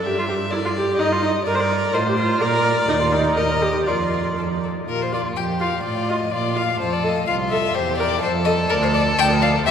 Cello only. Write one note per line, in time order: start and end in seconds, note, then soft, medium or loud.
0.04 0.98 G2 medium
0.99 1.41 G2 medium
1.47 1.89 G2 medium
1.94 2.36 A2 medium
2.42 2.84 A#2 medium
2.89 3.32 D#2 medium
3.37 3.81 D#2 medium
3.87 4.32 F2 medium
4.37 4.82 F2 soft
4.88 5.28 A#2 medium
5.36 5.76 F2 medium
5.84 6.24 A2 medium
6.32 6.72 A#2 medium
6.80 7.20 F2 medium
7.28 7.68 C2 medium
7.76 8.15 E2 medium
8.23 8.63 F2 medium
8.71 9.13 D2 medium
9.18 9.60 D2 medium
9.66 9.71 E2 medium